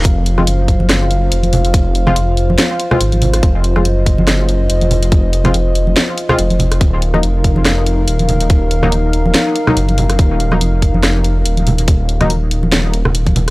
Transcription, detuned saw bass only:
X:1
M:4/4
L:1/8
Q:"Swing 16ths" 1/4=142
K:Ebdor
V:1 name="Detuned saw bass" clef=bass
F,,,2 G,,,4 F,,,2- | F,,,2 F,,,2 z2 A,,,2 | F,,,2 G,,,4 F,,,2- | F,,,2 F,,,2 z2 F,,,2 |
E,,,2 F,,,4 E,,,2- | E,,,2 E,,,2 z2 G,,,2 | E,,,2 F,,,4 E,,,2- | E,,,2 E,,,2 E,,,4 |]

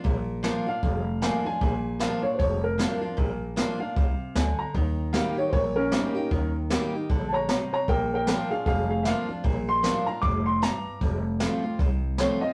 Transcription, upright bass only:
X:1
M:4/4
L:1/8
Q:"Swing" 1/4=153
K:Bb
V:1 name="Upright bass" clef=bass
B,,,3 z F,,,3 z | B,,,3 z F,,,3 z | B,,,3 z C,, z D,, z | E,,3 z B,,,3 z |
E,,3 z B,,,3 z | B,,,3 z F,,,3 z | B,,,3 z F,,,3 z | F,,,3 z C,,3 z |]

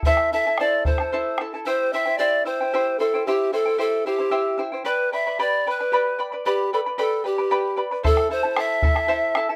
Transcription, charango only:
X:1
M:6/8
L:1/16
Q:3/8=75
K:C
V:1 name="Charango"
[EAcea]2 [EAea] [EAa] [EAcea]2 [EAea] [EAa] [EAcea]2 [EAea] [EAa] | [EGceg]2 [Eceg] [Ecg] [EGceg]2 [Eceg] [Ecg] [EGceg]2 [Eceg] [Ecg] | [EGceg]2 [Eceg] [Ecg] [EGceg]2 [Eceg] [Ecg] [EGceg]2 [Eceg] [Ecg] | [GBdgb]2 [Bdgb] [Bdb] [GBdgb]2 [Bdgb] [Bdb] [GBdgb]2 [Bdgb] [Bdb] |
[GBdgb]2 [Bdgb] [Bdb] [GBdgb]2 [Bdgb] [Bdb] [GBdgb]2 [Bdgb] [Bdb] | [EAcea]2 [EAea] [EAa] [EAcea]2 [EAea] [EAa] [EAcea]2 [EAea] [EAa] |]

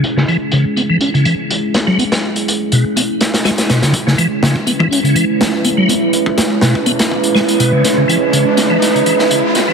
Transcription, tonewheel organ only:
X:1
M:4/4
L:1/16
Q:1/4=123
K:C#m
V:1 name="Tonewheel organ" clef=bass
z C, E, z C, z B, E, C C, E, z3 B, F, | B, z4 z B,, z B, z3 G, z B,, C, | z C, E, z C, z B, E, C C, E, z3 B, F, | B, z4 z B,, z B, z3 G, z B,, C, |
z C, E, z C, z B, E, z C, E, z C, z B, E, |]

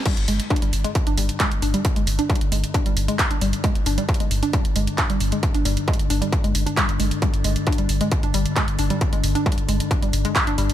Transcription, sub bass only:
X:1
M:4/4
L:1/16
Q:1/4=134
K:Cm
V:1 name="Sub bass" clef=bass
z G,,, G,,, z2 G,,, G,,, z2 G,,, G,,, z2 G,,, G,,, z | z G,,, G,,, z2 G,,, G,,, z2 G,,, G,,, z2 G,,, G,,, z | z G,,, G,,, z2 G,,, G,,, z2 G,,, G,,, z2 G,,, G,,, z | z G,,, G,,, z2 G,,, G,,, z2 G,,, G,,, z2 G,,, G,,, z |
z G,,, G,,, z2 G,,, G,,, z2 G,,, G,,, z2 G,,, G,,, z | z G,,, G,,, z2 G,,, G,,, z2 G,,, G,,, z2 G,,, G,,, z |]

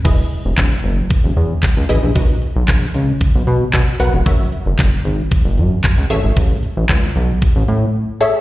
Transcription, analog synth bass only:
X:1
M:4/4
L:1/16
Q:1/4=114
K:Elyd
V:1 name="Analog synth bass" clef=bass
E,,,2 z E,,, E,,,2 F,,,2 z E,,, E,,2 z C,, =A,,, ^A,,, | B,,,2 z B,,, A,,,2 C,,2 z B,,, B,,2 B,, z B,,, ^E,,, | F,,,2 z F,,, F,,,2 G,,,2 z F,,, F,,2 z C,, =A,,, G,,, | =A,,,2 z A,,, C,,2 B,,,2 z A,,, =A,,2 z4 |]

